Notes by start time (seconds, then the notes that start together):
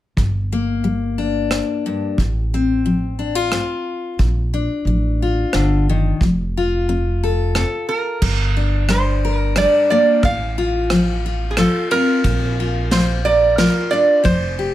0.17 G1 G2, kick
0.52 A#3
0.84 G3
1.18 D4
1.51 cross-stick
1.86 G2
2.18 A1 A2, kick
2.54 C4
2.86 F3
3.19 D4
3.35 F4
3.52 A2, cross-stick
4.19 A#1 A#2, kick
4.54 D4
4.85 A1 F3
5.22 F4
5.53 G1 D3, cross-stick
5.89 D#3
6.21 F1 F3, kick
6.57 F4
6.89 C4
7.23 A4
7.55 C3 A4, cross-stick
7.89 A#4
8.22 G1 G2, kick, crash
8.57 D4
8.89 G3 C5, cross-stick, ride
9.25 A#4
9.37 A#4
9.56 G3 D4 D5, cross-stick, ride
9.90 A#3 D5
10.23 A1 A2 F5, kick, ride
10.58 F4
10.90 F3, cross-stick, ride
11.26 F4
11.51 G#4
11.57 F3 F4 A4, cross-stick, ride
11.91 C4 A#4, ride
12.24 A#1 A#2, kick, ride
12.60 F4
12.91 F3 C5, snare, ride
13.25 A#4 D5
13.58 F3 F4 A#4, snare, ride
13.91 D4 D5
14.24 F1 F3 C5, kick, ride
14.59 G4